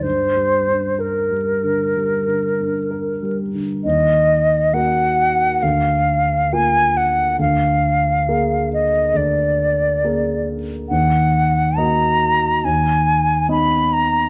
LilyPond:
<<
  \new Staff \with { instrumentName = "Flute" } { \time 4/4 \key g \minor \tempo 4 = 68 c''4 bes'2~ bes'8 r8 | \key ees \minor ees''4 ges''4 f''4 aes''8 ges''8 | f''4. ees''8 d''4. r8 | ges''4 bes''4 aes''4 ces'''8 bes''8 | }
  \new Staff \with { instrumentName = "Grand piano" } { \time 4/4 \key g \minor \tuplet 3/2 { g,8 g8 d'8 bes'8 g8 d8 g8 d8 d'8 bes'8 g8 d8 } | \key ees \minor ees,4 <bes ges' bes'>4 d,4 <bes f' bes'>4 | d,4 <bes aes' bes'>4 d,4 <bes aes' bes'>4 | ees,4 <bes ges' ees''>4 ees,4 <ces' ees' ees''>4 | }
>>